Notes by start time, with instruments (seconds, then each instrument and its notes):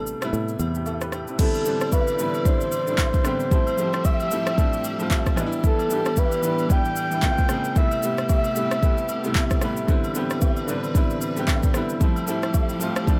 Already playing: fingered electric bass A1, grand piano C3 G3 A3 B3 D4 E4, soft synth lead A4
0.07 shaker
0.21 grand piano C3 G3 A3 B3 E4, cross-stick, high agogo, shaker
0.33 fingered electric bass A2, shaker
0.48 shaker
0.59 fingered electric bass E2, grand piano C4 E4, high agogo, shaker
0.75 grand piano E4 G4, shaker
0.86 grand piano A4, high agogo, low woodblock, shaker
1.01 grand piano G4 B4, cross-stick, shaker
1.12 grand piano E4 G4, cross-stick, high agogo, shaker
1.28 grand piano C4 E4, shaker
1.38 string section C3 E3 D4 D5, grand piano D3 G3 B3 C4 E4, soft synth lead A4, kick, crash, shaker
1.54 high agogo, shaker
1.64 grand piano D3 G3 B3 C4 D4, shaker
1.81 cross-stick, high agogo, shaker
1.92 soft synth lead B4, kick, low woodblock, shaker
2.07 high agogo, shaker
2.18 grand piano D3 G3 B3 C4 E4, shaker
2.34 high agogo, shaker
2.44 grand piano D3 G3 C4 D4 E4, soft synth lead C5, kick, shaker
2.61 shaker
2.72 high agogo, shaker
2.86 grand piano D3 G3 C4 D4 E4, shaker
2.98 kick, clap, high agogo, low woodblock, shaker
3.14 kick, shaker
3.24 grand piano D3 G3 B3 C4 G4, cross-stick, high agogo, shaker
3.40 shaker
3.50 grand piano F3 G3 A3 C4 E4, string section F3 A3 G4 E5, soft synth lead C5, kick, shaker
3.67 high agogo, shaker
3.77 grand piano F3 G3 A3 C4 G4, shaker
3.93 cross-stick, high agogo, shaker
4.05 soft synth lead E5, kick, low woodblock, shaker
4.20 high agogo, shaker
4.30 grand piano F3 G3 A3 C4 E4, shaker
4.47 cross-stick, high agogo, shaker
4.57 grand piano F3 G3 A3 C4 D4, kick, shaker
4.73 shaker
4.84 high agogo, shaker
4.99 grand piano F3 G3 A3 C4 F4, shaker
5.10 kick, clap, high agogo, low woodblock, shaker
5.26 kick, cross-stick, shaker
5.36 grand piano E3 G3 B3 D4 D#4, string section E3 B3 D4 G4, cross-stick, high agogo, shaker
5.46 grand piano E4
5.52 shaker
5.64 soft synth lead A4, kick, shaker
5.79 high agogo, shaker
5.89 grand piano E3 G3 B3 D4 G4, shaker
6.05 cross-stick, high agogo, shaker
6.16 soft synth lead B4, kick, low woodblock, shaker
6.32 high agogo, shaker
6.42 grand piano E3 G3 B3 D4 E4, shaker
6.59 high agogo, shaker
6.69 grand piano E3 G3 B3 D4 G4, soft synth lead G5, kick, shaker
6.85 shaker
6.96 high agogo, shaker
7.11 grand piano E3 G3 B3 D4 E4, shaker
7.22 grand piano C#3 G#3 A#3 C4 F4, string section C#3 A#3 C4 G#4, kick, clap, high agogo, low woodblock, shaker
7.38 kick, shaker
7.48 grand piano C#3 G#3 A#3 C4 G#4, cross-stick, high agogo, shaker
7.64 shaker
7.75 grand piano C3 G3 A3 B3 E4, string section C3 A3 B3 G4, soft synth lead E5, kick, shaker
7.91 high agogo, shaker
8.01 grand piano C3 G3 A3 B3, shaker
8.05 grand piano G4
8.18 cross-stick, high agogo, shaker
8.29 soft synth lead E5, kick, low woodblock, shaker
8.44 high agogo, shaker
8.54 grand piano C3 G3 A3 B3 E4, shaker
8.71 cross-stick, high agogo, shaker
8.81 grand piano C3 G3 A3 B3, kick, shaker
8.85 grand piano E4
8.98 shaker
9.09 high agogo, shaker
9.23 grand piano C3 G3 A3 B3 E4, shaker
9.35 kick, clap, high agogo, low woodblock, shaker
9.50 kick, cross-stick, shaker
9.61 grand piano C3 G3 A3 B3 E4, cross-stick, high agogo, shaker
9.77 shaker
9.87 string section C3 E3 D4 B4, grand piano D3 G3 B3 C4 E4, kick, shaker
10.04 high agogo, shaker
10.13 grand piano D3 G3 B3 C4 G4, shaker
10.30 cross-stick, high agogo, shaker
10.41 kick, low woodblock, shaker
10.57 high agogo, shaker
10.67 grand piano D3 G3 B3 C4 D4, shaker
10.84 high agogo, shaker
10.93 grand piano D3 G3 B3 C4 E4, kick, shaker
11.10 shaker
11.21 high agogo, shaker
11.35 grand piano D3 G3 B3 C4 G4, shaker
11.47 kick, clap, high agogo, low woodblock, shaker
11.63 kick, shaker
11.73 grand piano D3 G3 B3 C4 E4, cross-stick, high agogo, shaker
11.89 shaker
12.00 grand piano F3 G3 A3 C4 E4, string section F3 A3 E4 G4, kick, shaker
12.16 high agogo, shaker
12.26 grand piano F3 G3 A3 C4 E4, shaker
12.43 cross-stick, high agogo, shaker
12.54 kick, low woodblock, shaker
12.69 high agogo, shaker
12.79 grand piano F3 G3 A3 C4 F4, shaker
12.96 cross-stick, high agogo, shaker
13.06 grand piano F3 G3 A3 C4 D4, kick, shaker